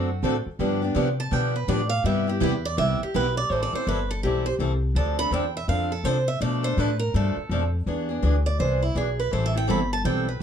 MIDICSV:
0, 0, Header, 1, 5, 480
1, 0, Start_track
1, 0, Key_signature, 0, "major"
1, 0, Tempo, 363196
1, 792, Time_signature, 4, 2, 24, 8
1, 4631, Key_signature, 0, "minor"
1, 13778, End_track
2, 0, Start_track
2, 0, Title_t, "Steel-string acoustic guitar"
2, 0, Program_c, 0, 25
2, 0, Note_on_c, 0, 66, 81
2, 367, Note_off_c, 0, 66, 0
2, 1584, Note_on_c, 0, 81, 98
2, 1754, Note_off_c, 0, 81, 0
2, 1754, Note_on_c, 0, 79, 79
2, 2044, Note_off_c, 0, 79, 0
2, 2057, Note_on_c, 0, 71, 75
2, 2227, Note_on_c, 0, 74, 86
2, 2228, Note_off_c, 0, 71, 0
2, 2498, Note_off_c, 0, 74, 0
2, 2504, Note_on_c, 0, 77, 103
2, 2691, Note_off_c, 0, 77, 0
2, 2717, Note_on_c, 0, 76, 83
2, 3005, Note_off_c, 0, 76, 0
2, 3031, Note_on_c, 0, 67, 50
2, 3195, Note_off_c, 0, 67, 0
2, 3215, Note_on_c, 0, 71, 75
2, 3495, Note_off_c, 0, 71, 0
2, 3507, Note_on_c, 0, 74, 94
2, 3670, Note_off_c, 0, 74, 0
2, 3676, Note_on_c, 0, 76, 98
2, 3965, Note_off_c, 0, 76, 0
2, 4005, Note_on_c, 0, 67, 66
2, 4163, Note_off_c, 0, 67, 0
2, 4176, Note_on_c, 0, 71, 85
2, 4452, Note_off_c, 0, 71, 0
2, 4458, Note_on_c, 0, 74, 101
2, 4648, Note_off_c, 0, 74, 0
2, 4648, Note_on_c, 0, 72, 78
2, 4787, Note_off_c, 0, 72, 0
2, 4792, Note_on_c, 0, 74, 84
2, 4947, Note_off_c, 0, 74, 0
2, 4960, Note_on_c, 0, 72, 83
2, 5111, Note_off_c, 0, 72, 0
2, 5135, Note_on_c, 0, 71, 75
2, 5415, Note_off_c, 0, 71, 0
2, 5426, Note_on_c, 0, 69, 86
2, 5588, Note_off_c, 0, 69, 0
2, 5594, Note_on_c, 0, 67, 78
2, 5885, Note_off_c, 0, 67, 0
2, 5891, Note_on_c, 0, 72, 81
2, 6000, Note_off_c, 0, 72, 0
2, 6558, Note_on_c, 0, 81, 82
2, 6847, Note_off_c, 0, 81, 0
2, 6857, Note_on_c, 0, 83, 115
2, 7030, Note_off_c, 0, 83, 0
2, 7052, Note_on_c, 0, 79, 78
2, 7335, Note_off_c, 0, 79, 0
2, 7358, Note_on_c, 0, 76, 87
2, 7513, Note_off_c, 0, 76, 0
2, 7518, Note_on_c, 0, 77, 100
2, 7808, Note_off_c, 0, 77, 0
2, 7822, Note_on_c, 0, 69, 70
2, 7994, Note_off_c, 0, 69, 0
2, 7994, Note_on_c, 0, 72, 82
2, 8286, Note_off_c, 0, 72, 0
2, 8297, Note_on_c, 0, 76, 101
2, 8471, Note_off_c, 0, 76, 0
2, 8478, Note_on_c, 0, 74, 86
2, 8769, Note_off_c, 0, 74, 0
2, 8779, Note_on_c, 0, 72, 94
2, 8982, Note_off_c, 0, 72, 0
2, 8982, Note_on_c, 0, 71, 76
2, 9239, Note_off_c, 0, 71, 0
2, 9244, Note_on_c, 0, 70, 82
2, 9425, Note_off_c, 0, 70, 0
2, 9461, Note_on_c, 0, 69, 76
2, 10177, Note_off_c, 0, 69, 0
2, 11182, Note_on_c, 0, 74, 84
2, 11354, Note_off_c, 0, 74, 0
2, 11364, Note_on_c, 0, 72, 73
2, 11652, Note_off_c, 0, 72, 0
2, 11663, Note_on_c, 0, 64, 62
2, 11834, Note_off_c, 0, 64, 0
2, 11861, Note_on_c, 0, 68, 71
2, 12140, Note_off_c, 0, 68, 0
2, 12153, Note_on_c, 0, 71, 76
2, 12319, Note_off_c, 0, 71, 0
2, 12329, Note_on_c, 0, 72, 78
2, 12478, Note_off_c, 0, 72, 0
2, 12498, Note_on_c, 0, 76, 76
2, 12643, Note_off_c, 0, 76, 0
2, 12653, Note_on_c, 0, 79, 86
2, 12800, Note_off_c, 0, 79, 0
2, 12819, Note_on_c, 0, 83, 88
2, 13099, Note_off_c, 0, 83, 0
2, 13122, Note_on_c, 0, 81, 91
2, 13279, Note_off_c, 0, 81, 0
2, 13284, Note_on_c, 0, 79, 89
2, 13571, Note_off_c, 0, 79, 0
2, 13593, Note_on_c, 0, 71, 51
2, 13758, Note_off_c, 0, 71, 0
2, 13778, End_track
3, 0, Start_track
3, 0, Title_t, "Steel-string acoustic guitar"
3, 0, Program_c, 1, 25
3, 314, Note_on_c, 1, 50, 78
3, 316, Note_on_c, 1, 57, 77
3, 319, Note_on_c, 1, 60, 81
3, 331, Note_on_c, 1, 66, 83
3, 332, Note_on_c, 1, 69, 93
3, 462, Note_off_c, 1, 50, 0
3, 464, Note_off_c, 1, 57, 0
3, 465, Note_off_c, 1, 60, 0
3, 471, Note_off_c, 1, 66, 0
3, 472, Note_off_c, 1, 69, 0
3, 786, Note_on_c, 1, 50, 73
3, 795, Note_on_c, 1, 53, 63
3, 801, Note_on_c, 1, 59, 72
3, 802, Note_on_c, 1, 62, 73
3, 808, Note_on_c, 1, 67, 67
3, 1066, Note_off_c, 1, 67, 0
3, 1071, Note_off_c, 1, 50, 0
3, 1076, Note_off_c, 1, 53, 0
3, 1078, Note_off_c, 1, 59, 0
3, 1079, Note_off_c, 1, 62, 0
3, 1082, Note_on_c, 1, 67, 53
3, 1096, Note_on_c, 1, 62, 55
3, 1115, Note_on_c, 1, 59, 52
3, 1250, Note_on_c, 1, 50, 90
3, 1251, Note_off_c, 1, 62, 0
3, 1252, Note_off_c, 1, 59, 0
3, 1259, Note_off_c, 1, 67, 0
3, 1267, Note_on_c, 1, 62, 88
3, 1268, Note_on_c, 1, 53, 83
3, 1268, Note_on_c, 1, 59, 97
3, 1273, Note_on_c, 1, 67, 94
3, 1410, Note_off_c, 1, 50, 0
3, 1419, Note_off_c, 1, 53, 0
3, 1419, Note_off_c, 1, 59, 0
3, 1419, Note_off_c, 1, 62, 0
3, 1422, Note_off_c, 1, 67, 0
3, 1733, Note_on_c, 1, 50, 67
3, 1737, Note_on_c, 1, 53, 74
3, 1747, Note_on_c, 1, 59, 68
3, 1748, Note_on_c, 1, 62, 78
3, 1755, Note_on_c, 1, 67, 66
3, 2024, Note_off_c, 1, 50, 0
3, 2026, Note_off_c, 1, 53, 0
3, 2031, Note_off_c, 1, 59, 0
3, 2032, Note_off_c, 1, 62, 0
3, 2035, Note_off_c, 1, 67, 0
3, 2220, Note_on_c, 1, 50, 78
3, 2224, Note_on_c, 1, 53, 79
3, 2230, Note_on_c, 1, 59, 91
3, 2233, Note_on_c, 1, 62, 84
3, 2237, Note_on_c, 1, 67, 88
3, 2375, Note_off_c, 1, 50, 0
3, 2377, Note_off_c, 1, 53, 0
3, 2380, Note_off_c, 1, 59, 0
3, 2381, Note_off_c, 1, 62, 0
3, 2384, Note_off_c, 1, 67, 0
3, 2705, Note_on_c, 1, 48, 63
3, 2718, Note_on_c, 1, 64, 73
3, 2719, Note_on_c, 1, 55, 73
3, 2719, Note_on_c, 1, 59, 70
3, 2726, Note_on_c, 1, 67, 76
3, 2985, Note_off_c, 1, 67, 0
3, 2990, Note_off_c, 1, 48, 0
3, 2997, Note_off_c, 1, 55, 0
3, 2997, Note_off_c, 1, 59, 0
3, 2997, Note_off_c, 1, 64, 0
3, 3001, Note_on_c, 1, 67, 58
3, 3012, Note_on_c, 1, 64, 60
3, 3029, Note_on_c, 1, 59, 45
3, 3171, Note_off_c, 1, 59, 0
3, 3174, Note_off_c, 1, 64, 0
3, 3176, Note_on_c, 1, 48, 90
3, 3178, Note_off_c, 1, 67, 0
3, 3179, Note_on_c, 1, 55, 80
3, 3186, Note_on_c, 1, 59, 92
3, 3190, Note_on_c, 1, 64, 100
3, 3193, Note_on_c, 1, 67, 104
3, 3333, Note_off_c, 1, 48, 0
3, 3334, Note_off_c, 1, 55, 0
3, 3338, Note_off_c, 1, 59, 0
3, 3340, Note_off_c, 1, 64, 0
3, 3341, Note_off_c, 1, 67, 0
3, 3661, Note_on_c, 1, 48, 68
3, 3667, Note_on_c, 1, 55, 67
3, 3676, Note_on_c, 1, 59, 75
3, 3677, Note_on_c, 1, 64, 78
3, 3679, Note_on_c, 1, 67, 66
3, 3949, Note_off_c, 1, 48, 0
3, 3951, Note_off_c, 1, 55, 0
3, 3956, Note_off_c, 1, 59, 0
3, 3956, Note_off_c, 1, 64, 0
3, 3958, Note_off_c, 1, 67, 0
3, 4153, Note_on_c, 1, 48, 82
3, 4158, Note_on_c, 1, 55, 81
3, 4159, Note_on_c, 1, 59, 96
3, 4168, Note_on_c, 1, 64, 85
3, 4168, Note_on_c, 1, 67, 96
3, 4301, Note_off_c, 1, 48, 0
3, 4304, Note_off_c, 1, 55, 0
3, 4304, Note_off_c, 1, 59, 0
3, 4309, Note_off_c, 1, 64, 0
3, 4309, Note_off_c, 1, 67, 0
3, 4642, Note_on_c, 1, 52, 61
3, 4649, Note_on_c, 1, 55, 60
3, 4650, Note_on_c, 1, 60, 65
3, 4657, Note_on_c, 1, 64, 59
3, 4659, Note_on_c, 1, 69, 67
3, 4918, Note_off_c, 1, 69, 0
3, 4919, Note_off_c, 1, 52, 0
3, 4923, Note_off_c, 1, 55, 0
3, 4923, Note_off_c, 1, 60, 0
3, 4927, Note_off_c, 1, 64, 0
3, 4934, Note_on_c, 1, 69, 62
3, 4949, Note_on_c, 1, 64, 48
3, 4966, Note_on_c, 1, 60, 46
3, 5105, Note_off_c, 1, 69, 0
3, 5106, Note_off_c, 1, 60, 0
3, 5113, Note_off_c, 1, 64, 0
3, 5113, Note_on_c, 1, 52, 78
3, 5117, Note_on_c, 1, 55, 80
3, 5122, Note_on_c, 1, 60, 86
3, 5129, Note_on_c, 1, 69, 86
3, 5132, Note_on_c, 1, 64, 87
3, 5262, Note_off_c, 1, 52, 0
3, 5264, Note_off_c, 1, 55, 0
3, 5266, Note_off_c, 1, 60, 0
3, 5270, Note_off_c, 1, 69, 0
3, 5271, Note_off_c, 1, 64, 0
3, 5606, Note_on_c, 1, 52, 63
3, 5609, Note_on_c, 1, 55, 62
3, 5616, Note_on_c, 1, 60, 67
3, 5620, Note_on_c, 1, 69, 74
3, 5621, Note_on_c, 1, 64, 64
3, 5882, Note_off_c, 1, 52, 0
3, 5884, Note_off_c, 1, 55, 0
3, 5887, Note_off_c, 1, 60, 0
3, 5889, Note_off_c, 1, 69, 0
3, 5890, Note_off_c, 1, 64, 0
3, 6074, Note_on_c, 1, 55, 70
3, 6076, Note_on_c, 1, 52, 68
3, 6081, Note_on_c, 1, 64, 85
3, 6083, Note_on_c, 1, 60, 84
3, 6095, Note_on_c, 1, 69, 75
3, 6223, Note_off_c, 1, 55, 0
3, 6224, Note_off_c, 1, 52, 0
3, 6227, Note_off_c, 1, 64, 0
3, 6228, Note_off_c, 1, 60, 0
3, 6233, Note_off_c, 1, 69, 0
3, 6562, Note_on_c, 1, 50, 61
3, 6565, Note_on_c, 1, 53, 64
3, 6573, Note_on_c, 1, 62, 66
3, 6574, Note_on_c, 1, 60, 64
3, 6581, Note_on_c, 1, 69, 70
3, 6841, Note_off_c, 1, 50, 0
3, 6842, Note_off_c, 1, 53, 0
3, 6844, Note_off_c, 1, 69, 0
3, 6846, Note_off_c, 1, 62, 0
3, 6847, Note_off_c, 1, 60, 0
3, 6860, Note_on_c, 1, 69, 54
3, 6872, Note_on_c, 1, 62, 55
3, 6890, Note_on_c, 1, 60, 47
3, 7023, Note_off_c, 1, 60, 0
3, 7023, Note_off_c, 1, 62, 0
3, 7027, Note_on_c, 1, 50, 80
3, 7030, Note_off_c, 1, 69, 0
3, 7034, Note_on_c, 1, 53, 87
3, 7039, Note_on_c, 1, 60, 86
3, 7039, Note_on_c, 1, 62, 88
3, 7052, Note_on_c, 1, 69, 93
3, 7180, Note_off_c, 1, 50, 0
3, 7184, Note_off_c, 1, 53, 0
3, 7186, Note_off_c, 1, 60, 0
3, 7186, Note_off_c, 1, 62, 0
3, 7193, Note_off_c, 1, 69, 0
3, 7508, Note_on_c, 1, 50, 61
3, 7510, Note_on_c, 1, 53, 57
3, 7516, Note_on_c, 1, 60, 65
3, 7521, Note_on_c, 1, 62, 70
3, 7523, Note_on_c, 1, 69, 71
3, 7794, Note_off_c, 1, 50, 0
3, 7795, Note_off_c, 1, 53, 0
3, 7799, Note_off_c, 1, 60, 0
3, 7801, Note_off_c, 1, 62, 0
3, 7802, Note_off_c, 1, 69, 0
3, 7987, Note_on_c, 1, 50, 84
3, 7996, Note_on_c, 1, 60, 90
3, 7997, Note_on_c, 1, 53, 75
3, 7998, Note_on_c, 1, 62, 73
3, 8004, Note_on_c, 1, 69, 89
3, 8141, Note_off_c, 1, 50, 0
3, 8145, Note_off_c, 1, 60, 0
3, 8146, Note_off_c, 1, 53, 0
3, 8146, Note_off_c, 1, 62, 0
3, 8149, Note_off_c, 1, 69, 0
3, 8466, Note_on_c, 1, 47, 65
3, 8472, Note_on_c, 1, 53, 70
3, 8477, Note_on_c, 1, 57, 70
3, 8478, Note_on_c, 1, 62, 67
3, 8479, Note_on_c, 1, 69, 69
3, 8748, Note_off_c, 1, 69, 0
3, 8754, Note_off_c, 1, 47, 0
3, 8757, Note_off_c, 1, 53, 0
3, 8759, Note_off_c, 1, 57, 0
3, 8760, Note_off_c, 1, 62, 0
3, 8764, Note_on_c, 1, 69, 62
3, 8777, Note_on_c, 1, 62, 54
3, 8799, Note_on_c, 1, 57, 51
3, 8943, Note_off_c, 1, 69, 0
3, 8946, Note_off_c, 1, 57, 0
3, 8949, Note_off_c, 1, 62, 0
3, 8951, Note_on_c, 1, 47, 82
3, 8958, Note_on_c, 1, 53, 80
3, 8962, Note_on_c, 1, 57, 81
3, 8971, Note_on_c, 1, 62, 91
3, 8973, Note_on_c, 1, 69, 97
3, 9103, Note_off_c, 1, 47, 0
3, 9107, Note_off_c, 1, 53, 0
3, 9109, Note_off_c, 1, 57, 0
3, 9113, Note_off_c, 1, 62, 0
3, 9114, Note_off_c, 1, 69, 0
3, 9439, Note_on_c, 1, 47, 63
3, 9441, Note_on_c, 1, 57, 69
3, 9442, Note_on_c, 1, 53, 62
3, 9449, Note_on_c, 1, 62, 72
3, 9450, Note_on_c, 1, 69, 64
3, 9721, Note_off_c, 1, 47, 0
3, 9722, Note_off_c, 1, 53, 0
3, 9722, Note_off_c, 1, 57, 0
3, 9725, Note_off_c, 1, 62, 0
3, 9726, Note_off_c, 1, 69, 0
3, 9927, Note_on_c, 1, 47, 73
3, 9930, Note_on_c, 1, 53, 82
3, 9933, Note_on_c, 1, 57, 81
3, 9940, Note_on_c, 1, 62, 85
3, 9944, Note_on_c, 1, 69, 82
3, 10072, Note_off_c, 1, 47, 0
3, 10073, Note_off_c, 1, 53, 0
3, 10075, Note_off_c, 1, 57, 0
3, 10078, Note_off_c, 1, 62, 0
3, 10080, Note_off_c, 1, 69, 0
3, 10400, Note_on_c, 1, 52, 59
3, 10407, Note_on_c, 1, 59, 61
3, 10414, Note_on_c, 1, 62, 62
3, 10419, Note_on_c, 1, 68, 70
3, 10674, Note_off_c, 1, 68, 0
3, 10681, Note_off_c, 1, 52, 0
3, 10685, Note_off_c, 1, 59, 0
3, 10688, Note_off_c, 1, 62, 0
3, 10690, Note_on_c, 1, 68, 56
3, 10707, Note_on_c, 1, 62, 56
3, 10716, Note_on_c, 1, 59, 44
3, 10859, Note_off_c, 1, 59, 0
3, 10866, Note_off_c, 1, 68, 0
3, 10870, Note_off_c, 1, 62, 0
3, 10870, Note_on_c, 1, 52, 78
3, 10875, Note_on_c, 1, 59, 87
3, 10886, Note_on_c, 1, 62, 84
3, 10893, Note_on_c, 1, 68, 82
3, 11023, Note_off_c, 1, 52, 0
3, 11026, Note_off_c, 1, 59, 0
3, 11031, Note_off_c, 1, 62, 0
3, 11035, Note_off_c, 1, 68, 0
3, 11354, Note_on_c, 1, 52, 65
3, 11365, Note_on_c, 1, 59, 57
3, 11370, Note_on_c, 1, 62, 73
3, 11374, Note_on_c, 1, 68, 68
3, 11638, Note_off_c, 1, 52, 0
3, 11643, Note_off_c, 1, 59, 0
3, 11646, Note_off_c, 1, 62, 0
3, 11648, Note_off_c, 1, 68, 0
3, 11830, Note_on_c, 1, 52, 72
3, 11839, Note_on_c, 1, 62, 81
3, 11843, Note_on_c, 1, 59, 78
3, 11845, Note_on_c, 1, 68, 74
3, 11983, Note_off_c, 1, 52, 0
3, 11987, Note_off_c, 1, 62, 0
3, 11989, Note_off_c, 1, 59, 0
3, 11990, Note_off_c, 1, 68, 0
3, 12305, Note_on_c, 1, 52, 63
3, 12321, Note_on_c, 1, 55, 63
3, 12324, Note_on_c, 1, 60, 64
3, 12326, Note_on_c, 1, 64, 67
3, 12327, Note_on_c, 1, 69, 73
3, 12581, Note_off_c, 1, 69, 0
3, 12593, Note_off_c, 1, 52, 0
3, 12596, Note_on_c, 1, 69, 54
3, 12601, Note_off_c, 1, 55, 0
3, 12603, Note_off_c, 1, 60, 0
3, 12603, Note_off_c, 1, 64, 0
3, 12624, Note_on_c, 1, 64, 50
3, 12630, Note_on_c, 1, 60, 45
3, 12774, Note_off_c, 1, 60, 0
3, 12779, Note_off_c, 1, 69, 0
3, 12783, Note_off_c, 1, 64, 0
3, 12783, Note_on_c, 1, 52, 81
3, 12789, Note_on_c, 1, 55, 78
3, 12790, Note_on_c, 1, 60, 79
3, 12798, Note_on_c, 1, 64, 89
3, 12801, Note_on_c, 1, 69, 97
3, 12939, Note_off_c, 1, 52, 0
3, 12942, Note_off_c, 1, 55, 0
3, 12942, Note_off_c, 1, 60, 0
3, 12947, Note_off_c, 1, 64, 0
3, 12948, Note_off_c, 1, 69, 0
3, 13284, Note_on_c, 1, 52, 59
3, 13287, Note_on_c, 1, 55, 60
3, 13287, Note_on_c, 1, 60, 69
3, 13294, Note_on_c, 1, 64, 63
3, 13299, Note_on_c, 1, 69, 74
3, 13562, Note_off_c, 1, 52, 0
3, 13563, Note_off_c, 1, 55, 0
3, 13563, Note_off_c, 1, 60, 0
3, 13567, Note_off_c, 1, 64, 0
3, 13569, Note_off_c, 1, 69, 0
3, 13778, End_track
4, 0, Start_track
4, 0, Title_t, "Upright bass"
4, 0, Program_c, 2, 32
4, 0, Note_on_c, 2, 42, 83
4, 292, Note_off_c, 2, 42, 0
4, 301, Note_on_c, 2, 45, 80
4, 585, Note_off_c, 2, 45, 0
4, 781, Note_on_c, 2, 43, 82
4, 1251, Note_off_c, 2, 43, 0
4, 1258, Note_on_c, 2, 48, 87
4, 1730, Note_off_c, 2, 48, 0
4, 1741, Note_on_c, 2, 47, 86
4, 2211, Note_off_c, 2, 47, 0
4, 2222, Note_on_c, 2, 45, 85
4, 2687, Note_off_c, 2, 45, 0
4, 2695, Note_on_c, 2, 43, 86
4, 3168, Note_off_c, 2, 43, 0
4, 3187, Note_on_c, 2, 40, 96
4, 3654, Note_off_c, 2, 40, 0
4, 3672, Note_on_c, 2, 36, 82
4, 3951, Note_off_c, 2, 36, 0
4, 4159, Note_on_c, 2, 35, 76
4, 4617, Note_off_c, 2, 35, 0
4, 4625, Note_on_c, 2, 33, 75
4, 4907, Note_off_c, 2, 33, 0
4, 5112, Note_on_c, 2, 31, 84
4, 5578, Note_off_c, 2, 31, 0
4, 5595, Note_on_c, 2, 35, 74
4, 6053, Note_off_c, 2, 35, 0
4, 6061, Note_on_c, 2, 36, 81
4, 6533, Note_off_c, 2, 36, 0
4, 6541, Note_on_c, 2, 38, 83
4, 7008, Note_off_c, 2, 38, 0
4, 7016, Note_on_c, 2, 40, 92
4, 7491, Note_off_c, 2, 40, 0
4, 7504, Note_on_c, 2, 41, 80
4, 7972, Note_off_c, 2, 41, 0
4, 7980, Note_on_c, 2, 48, 78
4, 8454, Note_off_c, 2, 48, 0
4, 8467, Note_on_c, 2, 47, 80
4, 8937, Note_off_c, 2, 47, 0
4, 8951, Note_on_c, 2, 45, 87
4, 9420, Note_off_c, 2, 45, 0
4, 9435, Note_on_c, 2, 43, 82
4, 9716, Note_off_c, 2, 43, 0
4, 9904, Note_on_c, 2, 41, 83
4, 10376, Note_off_c, 2, 41, 0
4, 10392, Note_on_c, 2, 40, 75
4, 10860, Note_off_c, 2, 40, 0
4, 10874, Note_on_c, 2, 38, 90
4, 11341, Note_off_c, 2, 38, 0
4, 11364, Note_on_c, 2, 36, 83
4, 11823, Note_off_c, 2, 36, 0
4, 11831, Note_on_c, 2, 35, 73
4, 12299, Note_off_c, 2, 35, 0
4, 12326, Note_on_c, 2, 33, 77
4, 12787, Note_off_c, 2, 33, 0
4, 12804, Note_on_c, 2, 31, 82
4, 13265, Note_off_c, 2, 31, 0
4, 13277, Note_on_c, 2, 35, 81
4, 13741, Note_off_c, 2, 35, 0
4, 13778, End_track
5, 0, Start_track
5, 0, Title_t, "Muted upright bass strokes"
5, 610, Note_on_c, 9, 29, 39
5, 742, Note_off_c, 9, 29, 0
5, 3973, Note_on_c, 9, 29, 40
5, 4106, Note_off_c, 9, 29, 0
5, 4926, Note_on_c, 9, 29, 37
5, 5058, Note_off_c, 9, 29, 0
5, 9732, Note_on_c, 9, 29, 39
5, 9864, Note_off_c, 9, 29, 0
5, 13778, End_track
0, 0, End_of_file